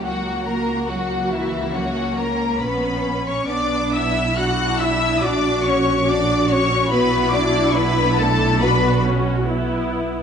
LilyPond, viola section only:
\new Staff \with { instrumentName = "Viola section" } { \time 4/4 \key b \minor \tempo 4 = 71 << { fis'2 cis'2 | d'4 e'4 fis'2 | fis'4 d'4 fis'4 e'4 | } \\ { ais4 ais2 cis'4 | b4 d'4 fis'4 fis'4 | e'2 d'8 cis'8 b4 | } >> }